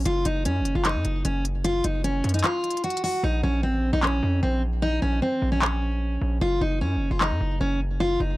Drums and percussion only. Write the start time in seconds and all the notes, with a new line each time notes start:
0.05 closed hi-hat
0.25 closed hi-hat
0.45 closed hi-hat
0.65 closed hi-hat
0.85 clap, closed hi-hat
1.05 closed hi-hat
1.25 closed hi-hat
1.45 closed hi-hat
1.64 closed hi-hat
1.84 closed hi-hat
2.04 closed hi-hat
2.24 closed hi-hat
2.29 closed hi-hat
2.34 closed hi-hat
2.39 closed hi-hat
2.44 clap, closed hi-hat
2.64 closed hi-hat
2.70 closed hi-hat
2.77 closed hi-hat
2.84 closed hi-hat
2.90 closed hi-hat
2.97 closed hi-hat
3.04 open hi-hat
4.03 clap
5.62 clap
7.21 clap